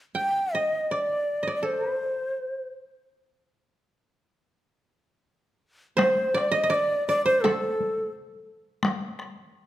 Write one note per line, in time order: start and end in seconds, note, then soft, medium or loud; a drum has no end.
0.15 1.49 G5 medium
0.15 0.55 G5 medium
0.53 0.93 D#5 medium
0.53 0.97 D#5 soft
0.91 1.55 D5 medium
0.91 1.47 D5 medium
1.43 1.54 D#5 soft
1.48 3.08 D5 soft
1.55 1.66 D5 soft
1.63 1.95 A4 soft
1.63 2.69 C5 medium
1.95 3.34 C5 soft
5.97 7.25 C5 medium
5.97 6.39 C5 medium
5.97 taiko rim medium
5.97 taiko high medium
6.34 6.58 D5 medium
6.34 taiko rim soft
6.52 6.63 D#5 medium
6.57 6.75 D#5 medium
6.63 6.76 D#5 medium
6.70 7.08 D5 medium
6.74 7.07 D5 medium
7.08 7.24 D5 medium
7.08 8.69 D5 medium
7.26 8.97 C5 medium
7.26 7.42 C5 medium
7.41 8.11 A4 medium
7.41 9.34 A4 medium
7.41 taiko rim soft
7.41 taiko high soft
7.80 taiko high soft
8.83 taiko rim medium
8.83 taiko high medium
9.19 taiko rim soft